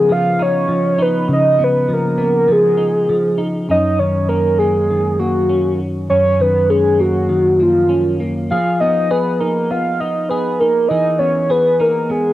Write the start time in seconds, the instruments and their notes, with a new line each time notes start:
Already playing: clean electric guitar C#3 B3, soft synth lead G#4
0.09 clean electric guitar F3, soft synth lead F5
0.39 clean electric guitar D#4, soft synth lead C#5
0.68 clean electric guitar F3
0.98 clean electric guitar D#4, soft synth lead B4
1.28 clean electric guitar C#3
1.33 soft synth lead D#5
1.59 clean electric guitar B3
1.64 soft synth lead B4
1.88 clean electric guitar F3
1.93 soft synth lead A#4
2.18 clean electric guitar B3
2.48 clean electric guitar F3, soft synth lead G#4
2.78 clean electric guitar D#4
3.09 clean electric guitar F3
3.38 clean electric guitar D#4
3.69 clean electric guitar F#2 C#4, soft synth lead D#5
3.99 clean electric guitar D#3, soft synth lead C#5
4.29 clean electric guitar C#4, soft synth lead A#4
4.58 clean electric guitar A#3, soft synth lead G#4
4.91 clean electric guitar D#3
5.19 clean electric guitar A#3, soft synth lead F#4
5.49 clean electric guitar C#4
6.10 clean electric guitar F#2 C#4, soft synth lead C#5
6.40 clean electric guitar D#3, soft synth lead B4
6.70 clean electric guitar C#4, soft synth lead G#4
7.00 clean electric guitar A#3, soft synth lead F#4
7.29 clean electric guitar D#3
7.60 clean electric guitar A#3, soft synth lead F4
7.89 clean electric guitar C#4
8.20 clean electric guitar A#3
8.51 clean electric guitar F3 G#4, soft synth lead F5
8.80 clean electric guitar B3, soft synth lead D#5
9.11 clean electric guitar G#4, soft synth lead B4
9.40 clean electric guitar D#4, soft synth lead A#4
9.70 clean electric guitar B3, soft synth lead F5
10.00 clean electric guitar D#4, soft synth lead D#5
10.29 clean electric guitar G#4, soft synth lead B4
10.60 clean electric guitar D#4, soft synth lead A#4
10.88 clean electric guitar E3 G#4, soft synth lead D#5
11.19 clean electric guitar B3, soft synth lead C#5
11.50 clean electric guitar G#4, soft synth lead B4
11.80 clean electric guitar D#4, soft synth lead A#4
12.10 clean electric guitar B3, soft synth lead G#4